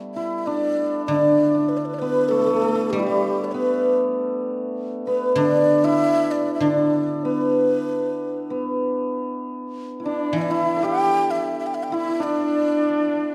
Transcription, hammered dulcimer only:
0, 0, Header, 1, 2, 480
1, 0, Start_track
1, 0, Tempo, 614754
1, 1330, Time_signature, 4, 2, 24, 8
1, 4680, Tempo, 620476
1, 10369, End_track
2, 0, Start_track
2, 0, Title_t, "Hammered dulcimer"
2, 0, Program_c, 0, 15
2, 0, Note_on_c, 0, 55, 57
2, 0, Note_on_c, 0, 57, 66
2, 0, Note_on_c, 0, 59, 44
2, 127, Note_on_c, 0, 64, 72
2, 367, Note_on_c, 0, 62, 77
2, 839, Note_off_c, 0, 62, 0
2, 842, Note_on_c, 0, 62, 66
2, 1204, Note_off_c, 0, 62, 0
2, 1207, Note_on_c, 0, 62, 49
2, 1517, Note_off_c, 0, 59, 0
2, 1573, Note_on_c, 0, 59, 71
2, 1799, Note_off_c, 0, 57, 0
2, 1802, Note_on_c, 0, 57, 74
2, 1849, Note_off_c, 0, 55, 0
2, 1862, Note_off_c, 0, 57, 0
2, 1865, Note_on_c, 0, 57, 51
2, 1923, Note_off_c, 0, 57, 0
2, 1926, Note_on_c, 0, 57, 67
2, 1974, Note_off_c, 0, 57, 0
2, 1977, Note_on_c, 0, 57, 54
2, 2036, Note_off_c, 0, 57, 0
2, 2039, Note_on_c, 0, 57, 57
2, 2084, Note_off_c, 0, 57, 0
2, 2087, Note_on_c, 0, 57, 49
2, 2145, Note_off_c, 0, 57, 0
2, 2149, Note_on_c, 0, 57, 64
2, 2292, Note_on_c, 0, 55, 71
2, 2389, Note_off_c, 0, 55, 0
2, 2392, Note_on_c, 0, 55, 65
2, 2762, Note_off_c, 0, 59, 0
2, 2765, Note_on_c, 0, 59, 71
2, 2840, Note_off_c, 0, 64, 0
2, 3956, Note_off_c, 0, 59, 0
2, 3959, Note_on_c, 0, 59, 64
2, 4119, Note_off_c, 0, 62, 0
2, 4196, Note_on_c, 0, 62, 77
2, 4560, Note_on_c, 0, 64, 75
2, 5158, Note_off_c, 0, 62, 0
2, 5161, Note_on_c, 0, 62, 70
2, 5601, Note_off_c, 0, 57, 0
2, 5647, Note_off_c, 0, 59, 0
2, 5651, Note_on_c, 0, 59, 65
2, 6093, Note_off_c, 0, 55, 0
2, 6618, Note_off_c, 0, 59, 0
2, 6621, Note_on_c, 0, 59, 54
2, 7249, Note_off_c, 0, 64, 0
2, 7777, Note_on_c, 0, 64, 46
2, 7819, Note_off_c, 0, 62, 0
2, 7822, Note_on_c, 0, 62, 64
2, 8055, Note_off_c, 0, 64, 0
2, 8058, Note_on_c, 0, 64, 67
2, 8170, Note_off_c, 0, 64, 0
2, 8173, Note_on_c, 0, 64, 72
2, 8371, Note_on_c, 0, 69, 47
2, 8419, Note_on_c, 0, 67, 72
2, 9262, Note_off_c, 0, 64, 0
2, 9265, Note_on_c, 0, 64, 75
2, 9476, Note_off_c, 0, 62, 0
2, 9479, Note_on_c, 0, 62, 80
2, 9815, Note_off_c, 0, 59, 0
2, 10369, Note_off_c, 0, 62, 0
2, 10369, Note_off_c, 0, 64, 0
2, 10369, Note_off_c, 0, 67, 0
2, 10369, Note_off_c, 0, 69, 0
2, 10369, End_track
0, 0, End_of_file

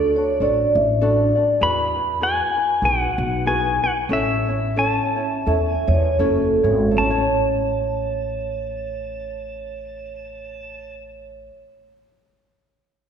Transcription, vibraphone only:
0, 0, Header, 1, 2, 480
1, 0, Start_track
1, 0, Key_signature, 3, "major"
1, 0, Tempo, 607287
1, 1274, Time_signature, 4, 2, 24, 8
1, 2728, Tempo, 656455
1, 3688, Tempo, 697674
1, 4168, Tempo, 755668
1, 5128, Tempo, 804290
1, 8782, End_track
2, 0, Start_track
2, 0, Title_t, "Vibraphone"
2, 0, Program_c, 0, 11
2, 0, Note_on_c, 0, 69, 74
2, 103, Note_off_c, 0, 69, 0
2, 128, Note_on_c, 0, 73, 89
2, 218, Note_off_c, 0, 73, 0
2, 331, Note_on_c, 0, 74, 91
2, 599, Note_on_c, 0, 76, 91
2, 609, Note_off_c, 0, 74, 0
2, 689, Note_off_c, 0, 76, 0
2, 805, Note_on_c, 0, 74, 77
2, 1150, Note_off_c, 0, 74, 0
2, 4176, Note_on_c, 0, 76, 101
2, 4430, Note_on_c, 0, 73, 84
2, 4445, Note_off_c, 0, 76, 0
2, 4636, Note_on_c, 0, 69, 72
2, 4640, Note_off_c, 0, 73, 0
2, 5104, Note_off_c, 0, 69, 0
2, 5133, Note_on_c, 0, 73, 74
2, 7830, Note_off_c, 0, 73, 0
2, 8782, End_track
0, 0, End_of_file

